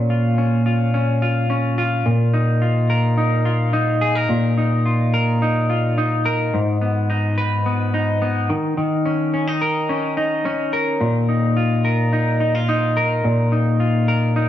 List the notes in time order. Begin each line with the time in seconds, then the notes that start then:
Already playing: A#2 C#4
0.10 F4
0.38 C#4
0.66 F4
0.94 C#4
1.22 F4
1.50 C#4
1.78 F4
2.06 A#2
2.34 D#4
2.62 F4
2.90 A#4
3.17 D#4
3.45 F4
3.73 D#4
4.01 G#4
4.15 A#4
4.29 A#2
4.58 D#4
4.86 F4
5.14 A#4
5.42 D#4
5.70 F4
5.98 D#4
6.25 A#4
6.54 G#2
6.81 B3
7.10 D#4
7.38 B4
7.66 B3
7.94 D#4
8.22 B3
8.50 D#3
8.77 D#3
9.05 C#4
9.34 C#4
9.47 D#4
9.61 A#4
9.89 C#4
10.17 D#4
10.45 C#4
10.73 A#4
11.01 A#2
11.29 D#4
11.57 F4
11.85 A#4
12.13 D#4
12.40 D#4
12.55 F4
12.69 D#4
12.97 A#4
13.24 A#2
13.52 D#4
13.80 F4
14.08 A#4
14.36 D#4